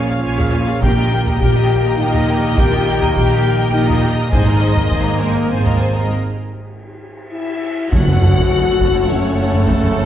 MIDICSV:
0, 0, Header, 1, 12, 480
1, 0, Start_track
1, 0, Tempo, 583658
1, 681, Time_signature, 3, 2, 24, 8
1, 4044, Tempo, 600601
1, 6444, Tempo, 586510
1, 8190, End_track
2, 0, Start_track
2, 0, Title_t, "Violin section"
2, 0, Program_c, 0, 48
2, 0, Note_on_c, 0, 80, 56
2, 73, Note_on_c, 0, 77, 52
2, 77, Note_on_c, 0, 73, 51
2, 82, Note_off_c, 0, 80, 0
2, 188, Note_off_c, 0, 77, 0
2, 198, Note_on_c, 0, 77, 54
2, 200, Note_off_c, 0, 73, 0
2, 200, Note_on_c, 0, 80, 58
2, 312, Note_off_c, 0, 77, 0
2, 313, Note_off_c, 0, 80, 0
2, 324, Note_on_c, 0, 77, 56
2, 327, Note_on_c, 0, 73, 56
2, 429, Note_off_c, 0, 77, 0
2, 432, Note_on_c, 0, 80, 61
2, 439, Note_on_c, 0, 77, 63
2, 444, Note_off_c, 0, 73, 0
2, 551, Note_off_c, 0, 77, 0
2, 556, Note_off_c, 0, 80, 0
2, 561, Note_on_c, 0, 77, 56
2, 567, Note_on_c, 0, 73, 55
2, 681, Note_off_c, 0, 77, 0
2, 683, Note_off_c, 0, 73, 0
2, 683, Note_on_c, 0, 79, 60
2, 684, Note_off_c, 0, 79, 0
2, 684, Note_on_c, 0, 79, 62
2, 794, Note_off_c, 0, 79, 0
2, 801, Note_on_c, 0, 75, 55
2, 802, Note_on_c, 0, 82, 56
2, 920, Note_off_c, 0, 75, 0
2, 921, Note_off_c, 0, 82, 0
2, 932, Note_on_c, 0, 79, 59
2, 934, Note_off_c, 0, 79, 0
2, 934, Note_on_c, 0, 79, 59
2, 1045, Note_on_c, 0, 75, 61
2, 1047, Note_off_c, 0, 79, 0
2, 1048, Note_on_c, 0, 82, 64
2, 1161, Note_on_c, 0, 79, 69
2, 1163, Note_off_c, 0, 75, 0
2, 1164, Note_off_c, 0, 79, 0
2, 1164, Note_off_c, 0, 82, 0
2, 1164, Note_on_c, 0, 79, 68
2, 1274, Note_off_c, 0, 79, 0
2, 1283, Note_on_c, 0, 75, 61
2, 1285, Note_on_c, 0, 82, 61
2, 1403, Note_off_c, 0, 75, 0
2, 1403, Note_off_c, 0, 82, 0
2, 1412, Note_on_c, 0, 79, 62
2, 1413, Note_off_c, 0, 79, 0
2, 1413, Note_on_c, 0, 79, 60
2, 1526, Note_on_c, 0, 75, 55
2, 1528, Note_off_c, 0, 79, 0
2, 1528, Note_on_c, 0, 82, 54
2, 1644, Note_off_c, 0, 75, 0
2, 1645, Note_off_c, 0, 82, 0
2, 1656, Note_on_c, 0, 79, 59
2, 1761, Note_off_c, 0, 79, 0
2, 1770, Note_on_c, 0, 82, 61
2, 1771, Note_on_c, 0, 75, 65
2, 1886, Note_off_c, 0, 75, 0
2, 1886, Note_off_c, 0, 82, 0
2, 1887, Note_on_c, 0, 79, 61
2, 1888, Note_off_c, 0, 79, 0
2, 1888, Note_on_c, 0, 79, 65
2, 2004, Note_off_c, 0, 79, 0
2, 2007, Note_on_c, 0, 82, 59
2, 2008, Note_on_c, 0, 75, 59
2, 2123, Note_on_c, 0, 79, 64
2, 2124, Note_off_c, 0, 75, 0
2, 2124, Note_off_c, 0, 82, 0
2, 2233, Note_off_c, 0, 79, 0
2, 2236, Note_on_c, 0, 82, 58
2, 2239, Note_on_c, 0, 75, 58
2, 2343, Note_on_c, 0, 79, 65
2, 2350, Note_off_c, 0, 79, 0
2, 2350, Note_on_c, 0, 79, 61
2, 2358, Note_off_c, 0, 82, 0
2, 2359, Note_off_c, 0, 75, 0
2, 2469, Note_on_c, 0, 75, 68
2, 2469, Note_on_c, 0, 82, 66
2, 2475, Note_off_c, 0, 79, 0
2, 2585, Note_on_c, 0, 79, 70
2, 2589, Note_off_c, 0, 79, 0
2, 2589, Note_on_c, 0, 79, 78
2, 2594, Note_off_c, 0, 75, 0
2, 2594, Note_off_c, 0, 82, 0
2, 2705, Note_off_c, 0, 79, 0
2, 2705, Note_on_c, 0, 82, 67
2, 2710, Note_on_c, 0, 75, 66
2, 2805, Note_on_c, 0, 79, 60
2, 2807, Note_off_c, 0, 79, 0
2, 2807, Note_on_c, 0, 79, 63
2, 2832, Note_off_c, 0, 82, 0
2, 2835, Note_off_c, 0, 75, 0
2, 2930, Note_on_c, 0, 82, 60
2, 2932, Note_on_c, 0, 75, 60
2, 2943, Note_off_c, 0, 79, 0
2, 3047, Note_on_c, 0, 79, 62
2, 3051, Note_off_c, 0, 79, 0
2, 3051, Note_on_c, 0, 79, 63
2, 3064, Note_off_c, 0, 82, 0
2, 3065, Note_off_c, 0, 75, 0
2, 3168, Note_on_c, 0, 82, 68
2, 3175, Note_on_c, 0, 75, 69
2, 3176, Note_off_c, 0, 79, 0
2, 3300, Note_on_c, 0, 79, 65
2, 3303, Note_off_c, 0, 79, 0
2, 3303, Note_on_c, 0, 79, 72
2, 3304, Note_off_c, 0, 82, 0
2, 3308, Note_off_c, 0, 75, 0
2, 3425, Note_on_c, 0, 75, 63
2, 3432, Note_off_c, 0, 79, 0
2, 3433, Note_on_c, 0, 82, 61
2, 3536, Note_on_c, 0, 80, 65
2, 3538, Note_on_c, 0, 72, 63
2, 3554, Note_off_c, 0, 75, 0
2, 3557, Note_off_c, 0, 82, 0
2, 3660, Note_off_c, 0, 80, 0
2, 3661, Note_off_c, 0, 72, 0
2, 3662, Note_on_c, 0, 75, 62
2, 3665, Note_on_c, 0, 82, 62
2, 3784, Note_on_c, 0, 72, 64
2, 3784, Note_on_c, 0, 80, 59
2, 3793, Note_off_c, 0, 75, 0
2, 3794, Note_off_c, 0, 82, 0
2, 3900, Note_on_c, 0, 75, 64
2, 3902, Note_on_c, 0, 82, 60
2, 3914, Note_off_c, 0, 72, 0
2, 3914, Note_off_c, 0, 80, 0
2, 4019, Note_on_c, 0, 72, 67
2, 4023, Note_on_c, 0, 80, 71
2, 4033, Note_off_c, 0, 75, 0
2, 4034, Note_off_c, 0, 82, 0
2, 4141, Note_off_c, 0, 72, 0
2, 4142, Note_on_c, 0, 75, 60
2, 4143, Note_off_c, 0, 80, 0
2, 4143, Note_on_c, 0, 82, 60
2, 4267, Note_on_c, 0, 80, 56
2, 4271, Note_off_c, 0, 75, 0
2, 4271, Note_on_c, 0, 72, 59
2, 4272, Note_off_c, 0, 82, 0
2, 4393, Note_off_c, 0, 80, 0
2, 4396, Note_off_c, 0, 72, 0
2, 4401, Note_on_c, 0, 75, 56
2, 4404, Note_on_c, 0, 82, 51
2, 4520, Note_off_c, 0, 75, 0
2, 4520, Note_on_c, 0, 80, 54
2, 4521, Note_on_c, 0, 72, 54
2, 4522, Note_off_c, 0, 82, 0
2, 4626, Note_on_c, 0, 82, 54
2, 4628, Note_on_c, 0, 75, 56
2, 4631, Note_off_c, 0, 80, 0
2, 4632, Note_off_c, 0, 72, 0
2, 4745, Note_on_c, 0, 80, 55
2, 4747, Note_on_c, 0, 72, 56
2, 4753, Note_off_c, 0, 82, 0
2, 4754, Note_off_c, 0, 75, 0
2, 4862, Note_on_c, 0, 75, 49
2, 4862, Note_on_c, 0, 82, 51
2, 4873, Note_off_c, 0, 80, 0
2, 4874, Note_off_c, 0, 72, 0
2, 4992, Note_off_c, 0, 75, 0
2, 4992, Note_off_c, 0, 82, 0
2, 6439, Note_on_c, 0, 78, 64
2, 6443, Note_on_c, 0, 73, 64
2, 8190, Note_off_c, 0, 73, 0
2, 8190, Note_off_c, 0, 78, 0
2, 8190, End_track
3, 0, Start_track
3, 0, Title_t, "Violin section"
3, 0, Program_c, 1, 48
3, 681, Note_on_c, 1, 79, 96
3, 1127, Note_off_c, 1, 79, 0
3, 1154, Note_on_c, 1, 79, 84
3, 1629, Note_off_c, 1, 79, 0
3, 1638, Note_on_c, 1, 75, 85
3, 2116, Note_on_c, 1, 79, 107
3, 2119, Note_off_c, 1, 75, 0
3, 2581, Note_off_c, 1, 79, 0
3, 2591, Note_on_c, 1, 79, 94
3, 3065, Note_off_c, 1, 79, 0
3, 3070, Note_on_c, 1, 75, 90
3, 3545, Note_off_c, 1, 75, 0
3, 3555, Note_on_c, 1, 75, 96
3, 4265, Note_off_c, 1, 75, 0
3, 4278, Note_on_c, 1, 70, 74
3, 4513, Note_off_c, 1, 70, 0
3, 4523, Note_on_c, 1, 72, 76
3, 5002, Note_off_c, 1, 72, 0
3, 5971, Note_on_c, 1, 76, 70
3, 6416, Note_off_c, 1, 76, 0
3, 6451, Note_on_c, 1, 78, 96
3, 7408, Note_off_c, 1, 78, 0
3, 7410, Note_on_c, 1, 73, 74
3, 7885, Note_on_c, 1, 69, 88
3, 7888, Note_off_c, 1, 73, 0
3, 8190, Note_off_c, 1, 69, 0
3, 8190, End_track
4, 0, Start_track
4, 0, Title_t, "Viola section"
4, 0, Program_c, 2, 48
4, 75, Note_on_c, 2, 68, 54
4, 77, Note_on_c, 2, 77, 54
4, 195, Note_on_c, 2, 65, 64
4, 196, Note_on_c, 2, 73, 59
4, 199, Note_off_c, 2, 68, 0
4, 200, Note_off_c, 2, 77, 0
4, 310, Note_off_c, 2, 65, 0
4, 311, Note_off_c, 2, 73, 0
4, 323, Note_on_c, 2, 68, 58
4, 325, Note_on_c, 2, 77, 61
4, 438, Note_on_c, 2, 65, 59
4, 443, Note_off_c, 2, 68, 0
4, 443, Note_off_c, 2, 77, 0
4, 443, Note_on_c, 2, 73, 56
4, 557, Note_on_c, 2, 68, 54
4, 558, Note_on_c, 2, 77, 59
4, 559, Note_off_c, 2, 65, 0
4, 562, Note_off_c, 2, 73, 0
4, 674, Note_on_c, 2, 70, 67
4, 676, Note_on_c, 2, 67, 65
4, 679, Note_off_c, 2, 68, 0
4, 679, Note_off_c, 2, 77, 0
4, 778, Note_off_c, 2, 70, 0
4, 780, Note_off_c, 2, 67, 0
4, 788, Note_on_c, 2, 70, 59
4, 790, Note_on_c, 2, 67, 60
4, 904, Note_off_c, 2, 70, 0
4, 906, Note_off_c, 2, 67, 0
4, 914, Note_on_c, 2, 70, 63
4, 916, Note_on_c, 2, 67, 60
4, 1029, Note_off_c, 2, 67, 0
4, 1030, Note_off_c, 2, 70, 0
4, 1038, Note_on_c, 2, 67, 61
4, 1040, Note_on_c, 2, 70, 57
4, 1143, Note_off_c, 2, 70, 0
4, 1144, Note_off_c, 2, 67, 0
4, 1153, Note_on_c, 2, 70, 61
4, 1154, Note_on_c, 2, 67, 59
4, 1259, Note_off_c, 2, 67, 0
4, 1262, Note_off_c, 2, 70, 0
4, 1268, Note_on_c, 2, 67, 59
4, 1272, Note_on_c, 2, 70, 57
4, 1386, Note_off_c, 2, 70, 0
4, 1388, Note_off_c, 2, 67, 0
4, 1396, Note_on_c, 2, 70, 61
4, 1398, Note_on_c, 2, 67, 56
4, 1504, Note_off_c, 2, 67, 0
4, 1504, Note_off_c, 2, 70, 0
4, 1514, Note_on_c, 2, 67, 61
4, 1514, Note_on_c, 2, 70, 64
4, 1628, Note_off_c, 2, 67, 0
4, 1630, Note_off_c, 2, 70, 0
4, 1638, Note_on_c, 2, 67, 64
4, 1640, Note_on_c, 2, 70, 65
4, 1751, Note_off_c, 2, 67, 0
4, 1752, Note_off_c, 2, 70, 0
4, 1762, Note_on_c, 2, 67, 61
4, 1762, Note_on_c, 2, 70, 61
4, 1875, Note_off_c, 2, 70, 0
4, 1876, Note_off_c, 2, 67, 0
4, 1885, Note_on_c, 2, 70, 62
4, 1886, Note_on_c, 2, 67, 59
4, 1991, Note_off_c, 2, 70, 0
4, 1993, Note_off_c, 2, 67, 0
4, 2001, Note_on_c, 2, 70, 65
4, 2003, Note_on_c, 2, 67, 60
4, 2115, Note_off_c, 2, 70, 0
4, 2116, Note_off_c, 2, 67, 0
4, 2125, Note_on_c, 2, 70, 69
4, 2126, Note_on_c, 2, 67, 72
4, 2229, Note_off_c, 2, 70, 0
4, 2230, Note_off_c, 2, 67, 0
4, 2239, Note_on_c, 2, 70, 62
4, 2240, Note_on_c, 2, 67, 63
4, 2355, Note_off_c, 2, 67, 0
4, 2356, Note_off_c, 2, 70, 0
4, 2365, Note_on_c, 2, 67, 72
4, 2366, Note_on_c, 2, 70, 72
4, 2474, Note_off_c, 2, 70, 0
4, 2478, Note_off_c, 2, 67, 0
4, 2483, Note_on_c, 2, 70, 62
4, 2488, Note_on_c, 2, 67, 65
4, 2593, Note_off_c, 2, 67, 0
4, 2597, Note_off_c, 2, 70, 0
4, 2603, Note_on_c, 2, 67, 66
4, 2607, Note_on_c, 2, 70, 60
4, 2713, Note_off_c, 2, 67, 0
4, 2715, Note_off_c, 2, 70, 0
4, 2723, Note_on_c, 2, 67, 62
4, 2725, Note_on_c, 2, 70, 61
4, 2833, Note_off_c, 2, 67, 0
4, 2836, Note_off_c, 2, 70, 0
4, 2843, Note_on_c, 2, 67, 63
4, 2846, Note_on_c, 2, 70, 66
4, 2945, Note_off_c, 2, 67, 0
4, 2951, Note_off_c, 2, 70, 0
4, 2955, Note_on_c, 2, 67, 66
4, 2961, Note_on_c, 2, 70, 67
4, 3067, Note_off_c, 2, 70, 0
4, 3069, Note_off_c, 2, 67, 0
4, 3077, Note_on_c, 2, 70, 69
4, 3078, Note_on_c, 2, 67, 67
4, 3190, Note_off_c, 2, 67, 0
4, 3190, Note_off_c, 2, 70, 0
4, 3204, Note_on_c, 2, 67, 65
4, 3207, Note_on_c, 2, 70, 68
4, 3315, Note_off_c, 2, 67, 0
4, 3317, Note_off_c, 2, 70, 0
4, 3325, Note_on_c, 2, 67, 67
4, 3327, Note_on_c, 2, 70, 58
4, 3426, Note_off_c, 2, 67, 0
4, 3426, Note_off_c, 2, 70, 0
4, 3435, Note_on_c, 2, 70, 62
4, 3436, Note_on_c, 2, 67, 61
4, 3559, Note_off_c, 2, 67, 0
4, 3559, Note_off_c, 2, 70, 0
4, 3560, Note_on_c, 2, 68, 74
4, 3562, Note_on_c, 2, 72, 69
4, 3673, Note_off_c, 2, 68, 0
4, 3674, Note_off_c, 2, 72, 0
4, 3687, Note_on_c, 2, 70, 61
4, 3688, Note_on_c, 2, 68, 65
4, 3801, Note_off_c, 2, 68, 0
4, 3805, Note_off_c, 2, 70, 0
4, 3808, Note_on_c, 2, 72, 64
4, 3811, Note_on_c, 2, 68, 64
4, 3913, Note_off_c, 2, 68, 0
4, 3923, Note_on_c, 2, 68, 62
4, 3924, Note_on_c, 2, 70, 57
4, 3926, Note_off_c, 2, 72, 0
4, 4035, Note_off_c, 2, 68, 0
4, 4043, Note_on_c, 2, 72, 61
4, 4044, Note_on_c, 2, 68, 58
4, 4045, Note_off_c, 2, 70, 0
4, 4147, Note_off_c, 2, 68, 0
4, 4154, Note_off_c, 2, 72, 0
4, 4156, Note_on_c, 2, 70, 57
4, 4157, Note_on_c, 2, 68, 57
4, 4275, Note_off_c, 2, 68, 0
4, 4278, Note_off_c, 2, 70, 0
4, 4278, Note_on_c, 2, 72, 55
4, 4285, Note_on_c, 2, 68, 58
4, 4381, Note_off_c, 2, 68, 0
4, 4390, Note_on_c, 2, 68, 55
4, 4392, Note_on_c, 2, 70, 56
4, 4399, Note_off_c, 2, 72, 0
4, 4503, Note_off_c, 2, 68, 0
4, 4510, Note_on_c, 2, 72, 55
4, 4513, Note_on_c, 2, 68, 60
4, 4516, Note_off_c, 2, 70, 0
4, 4626, Note_off_c, 2, 72, 0
4, 4628, Note_off_c, 2, 68, 0
4, 4638, Note_on_c, 2, 68, 56
4, 4641, Note_on_c, 2, 70, 58
4, 4741, Note_off_c, 2, 68, 0
4, 4750, Note_on_c, 2, 68, 53
4, 4750, Note_on_c, 2, 72, 51
4, 4760, Note_off_c, 2, 70, 0
4, 4863, Note_off_c, 2, 68, 0
4, 4873, Note_on_c, 2, 68, 54
4, 4875, Note_off_c, 2, 72, 0
4, 4877, Note_on_c, 2, 70, 54
4, 4997, Note_off_c, 2, 68, 0
4, 4999, Note_off_c, 2, 70, 0
4, 6446, Note_on_c, 2, 61, 63
4, 6448, Note_on_c, 2, 69, 69
4, 8190, Note_off_c, 2, 61, 0
4, 8190, Note_off_c, 2, 69, 0
4, 8190, End_track
5, 0, Start_track
5, 0, Title_t, "French horn section"
5, 0, Program_c, 3, 60
5, 676, Note_on_c, 3, 67, 110
5, 1125, Note_off_c, 3, 67, 0
5, 1148, Note_on_c, 3, 67, 115
5, 1620, Note_on_c, 3, 63, 113
5, 1626, Note_off_c, 3, 67, 0
5, 2100, Note_off_c, 3, 63, 0
5, 2112, Note_on_c, 3, 67, 118
5, 2585, Note_off_c, 3, 67, 0
5, 2595, Note_on_c, 3, 67, 117
5, 3067, Note_off_c, 3, 67, 0
5, 3077, Note_on_c, 3, 63, 114
5, 3548, Note_off_c, 3, 63, 0
5, 3558, Note_on_c, 3, 63, 103
5, 4266, Note_off_c, 3, 63, 0
5, 4275, Note_on_c, 3, 58, 86
5, 4509, Note_on_c, 3, 60, 98
5, 4517, Note_off_c, 3, 58, 0
5, 4995, Note_off_c, 3, 60, 0
5, 5958, Note_on_c, 3, 64, 87
5, 6409, Note_off_c, 3, 64, 0
5, 6432, Note_on_c, 3, 66, 108
5, 7399, Note_off_c, 3, 66, 0
5, 7399, Note_on_c, 3, 61, 102
5, 7863, Note_on_c, 3, 57, 101
5, 7883, Note_off_c, 3, 61, 0
5, 8190, Note_off_c, 3, 57, 0
5, 8190, End_track
6, 0, Start_track
6, 0, Title_t, "Trombone section"
6, 0, Program_c, 4, 61
6, 0, Note_on_c, 4, 53, 69
6, 0, Note_on_c, 4, 61, 75
6, 648, Note_off_c, 4, 61, 0
6, 651, Note_off_c, 4, 53, 0
6, 678, Note_on_c, 4, 51, 89
6, 681, Note_on_c, 4, 58, 93
6, 3406, Note_off_c, 4, 51, 0
6, 3406, Note_off_c, 4, 58, 0
6, 3546, Note_on_c, 4, 51, 88
6, 3551, Note_on_c, 4, 58, 102
6, 4962, Note_off_c, 4, 51, 0
6, 4964, Note_off_c, 4, 58, 0
6, 6456, Note_on_c, 4, 49, 84
6, 6464, Note_on_c, 4, 57, 82
6, 8190, Note_off_c, 4, 49, 0
6, 8190, Note_off_c, 4, 57, 0
6, 8190, End_track
7, 0, Start_track
7, 0, Title_t, "Cello section"
7, 0, Program_c, 5, 48
7, 0, Note_on_c, 5, 46, 74
7, 150, Note_off_c, 5, 46, 0
7, 203, Note_on_c, 5, 46, 75
7, 624, Note_off_c, 5, 46, 0
7, 681, Note_on_c, 5, 46, 76
7, 1104, Note_off_c, 5, 46, 0
7, 1155, Note_on_c, 5, 46, 73
7, 1583, Note_off_c, 5, 46, 0
7, 1638, Note_on_c, 5, 46, 75
7, 2062, Note_off_c, 5, 46, 0
7, 2118, Note_on_c, 5, 46, 83
7, 2542, Note_off_c, 5, 46, 0
7, 2596, Note_on_c, 5, 46, 81
7, 3020, Note_off_c, 5, 46, 0
7, 3077, Note_on_c, 5, 46, 81
7, 3503, Note_off_c, 5, 46, 0
7, 3556, Note_on_c, 5, 44, 82
7, 3985, Note_off_c, 5, 44, 0
7, 4038, Note_on_c, 5, 44, 76
7, 4460, Note_off_c, 5, 44, 0
7, 4515, Note_on_c, 5, 44, 68
7, 4942, Note_off_c, 5, 44, 0
7, 6451, Note_on_c, 5, 42, 72
7, 8190, Note_off_c, 5, 42, 0
7, 8190, End_track
8, 0, Start_track
8, 0, Title_t, "Timpani"
8, 0, Program_c, 6, 47
8, 686, Note_on_c, 6, 46, 79
8, 1371, Note_off_c, 6, 46, 0
8, 6449, Note_on_c, 6, 42, 83
8, 7135, Note_off_c, 6, 42, 0
8, 8190, End_track
9, 0, Start_track
9, 0, Title_t, "Double bass section"
9, 0, Program_c, 7, 48
9, 0, Note_on_c, 7, 34, 73
9, 146, Note_off_c, 7, 34, 0
9, 202, Note_on_c, 7, 34, 72
9, 624, Note_off_c, 7, 34, 0
9, 678, Note_on_c, 7, 34, 71
9, 1102, Note_off_c, 7, 34, 0
9, 1151, Note_on_c, 7, 34, 88
9, 1581, Note_off_c, 7, 34, 0
9, 1637, Note_on_c, 7, 34, 84
9, 2062, Note_off_c, 7, 34, 0
9, 2113, Note_on_c, 7, 34, 85
9, 2540, Note_off_c, 7, 34, 0
9, 2590, Note_on_c, 7, 34, 88
9, 3017, Note_off_c, 7, 34, 0
9, 3067, Note_on_c, 7, 34, 82
9, 3498, Note_off_c, 7, 34, 0
9, 3554, Note_on_c, 7, 32, 84
9, 3984, Note_off_c, 7, 32, 0
9, 4041, Note_on_c, 7, 32, 81
9, 4462, Note_off_c, 7, 32, 0
9, 4517, Note_on_c, 7, 32, 72
9, 4942, Note_off_c, 7, 32, 0
9, 6442, Note_on_c, 7, 30, 67
9, 8190, Note_off_c, 7, 30, 0
9, 8190, End_track
10, 0, Start_track
10, 0, Title_t, "Sub drop"
10, 0, Program_c, 8, 103
10, 6450, Note_on_c, 8, 60, 76
10, 7888, Note_off_c, 8, 60, 0
10, 8190, End_track
11, 0, Start_track
11, 0, Title_t, "Taiko and cinematic ensemble drums"
11, 320, Note_on_c, 9, 43, 45
11, 402, Note_off_c, 9, 43, 0
11, 679, Note_on_c, 9, 41, 99
11, 761, Note_off_c, 9, 41, 0
11, 1039, Note_on_c, 9, 43, 49
11, 1122, Note_off_c, 9, 43, 0
11, 1159, Note_on_c, 9, 41, 80
11, 1241, Note_off_c, 9, 41, 0
11, 1761, Note_on_c, 9, 43, 48
11, 1843, Note_off_c, 9, 43, 0
11, 2120, Note_on_c, 9, 41, 99
11, 2202, Note_off_c, 9, 41, 0
11, 2482, Note_on_c, 9, 43, 52
11, 2564, Note_off_c, 9, 43, 0
11, 2600, Note_on_c, 9, 41, 78
11, 2682, Note_off_c, 9, 41, 0
11, 3203, Note_on_c, 9, 43, 48
11, 3285, Note_off_c, 9, 43, 0
11, 3560, Note_on_c, 9, 41, 102
11, 3642, Note_off_c, 9, 41, 0
11, 3923, Note_on_c, 9, 43, 52
11, 4006, Note_off_c, 9, 43, 0
11, 4042, Note_on_c, 9, 41, 78
11, 4122, Note_off_c, 9, 41, 0
11, 4639, Note_on_c, 9, 43, 48
11, 4719, Note_off_c, 9, 43, 0
11, 6449, Note_on_c, 9, 41, 89
11, 6531, Note_off_c, 9, 41, 0
11, 6572, Note_on_c, 9, 45, 52
11, 6653, Note_off_c, 9, 45, 0
11, 6693, Note_on_c, 9, 45, 57
11, 6775, Note_off_c, 9, 45, 0
11, 6813, Note_on_c, 9, 41, 79
11, 6895, Note_off_c, 9, 41, 0
11, 7168, Note_on_c, 9, 41, 80
11, 7250, Note_off_c, 9, 41, 0
11, 7409, Note_on_c, 9, 45, 60
11, 7491, Note_off_c, 9, 45, 0
11, 7769, Note_on_c, 9, 45, 54
11, 7851, Note_off_c, 9, 45, 0
11, 7884, Note_on_c, 9, 41, 95
11, 7966, Note_off_c, 9, 41, 0
11, 8005, Note_on_c, 9, 45, 53
11, 8087, Note_off_c, 9, 45, 0
11, 8124, Note_on_c, 9, 45, 59
11, 8190, Note_off_c, 9, 45, 0
11, 8190, End_track
12, 0, Start_track
12, 0, Title_t, "Tam-tam"
12, 6446, Note_on_c, 9, 52, 64
12, 6528, Note_off_c, 9, 52, 0
12, 8190, End_track
0, 0, End_of_file